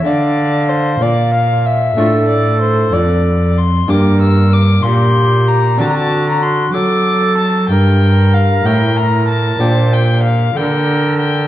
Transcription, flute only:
X:1
M:12/8
L:1/8
Q:3/8=63
K:Dm
V:1 name="Flute"
f6 A4- A z | B3 G3 ^F3 A3 | B6 c2 z B3 |]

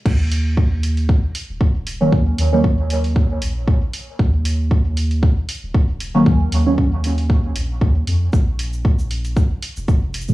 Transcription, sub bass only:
X:1
M:4/4
L:1/16
Q:"Swing 16ths" 1/4=116
K:Ebm
V:1 name="Sub bass" clef=bass
E,,8- E,, z2 E,,,4- E,,, | E,,2 E,,8 B,,,4 z2 | E,,8- E,, z2 E,,,4- E,,, | E,,2 E,,8 B,,,2 E,,2 F,,2 |
B,,,8- B,,, z2 F,,,4- F,,, |]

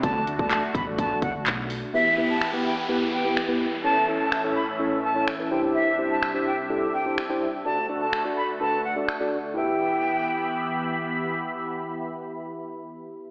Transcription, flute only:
X:1
M:4/4
L:1/16
Q:1/4=126
K:Em
V:1 name="Flute"
a2 z a2 z b z a2 f z4 z | e2 z a2 z g z3 g2 z4 | a2 z a2 z b z3 a2 z2 g z | e2 z a2 z g z3 g2 z4 |
a2 z a2 z b z a2 f z4 z | g12 z4 | z16 |]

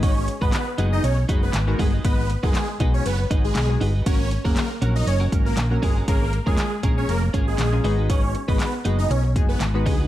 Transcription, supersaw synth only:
X:1
M:4/4
L:1/16
Q:1/4=119
K:G#dor
V:1 name="Supersaw synth"
[Cc]2 z [B,B] [B,B] z2 [Dd] [Cc] z2 [B,B] z2 [G,G] z | [B,B]2 z [G,G] [G,G] z2 [Cc] [B,B] z2 [G,G]2 z3 | [Cc]2 z [A,A] [A,A] z2 [Dd] [Cc] z2 [A,A] z2 [G,G] z | [A,A]2 z [G,G] [G,G] z2 [Cc] [A,A] z2 [G,G]2 z3 |
[Cc]2 z [B,B] [B,B] z2 [Dd] [Cc] z2 [B,B] z2 [G,G] z |]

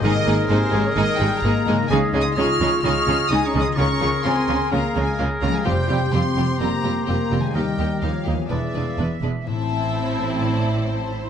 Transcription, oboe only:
X:1
M:4/4
L:1/8
Q:1/4=127
K:Fm
V:1 name="Oboe"
B8 | e2 e2 e2 e2 | B4 B4 | c2 c6 |
B3 z =d3 z | [K:Am] z8 |]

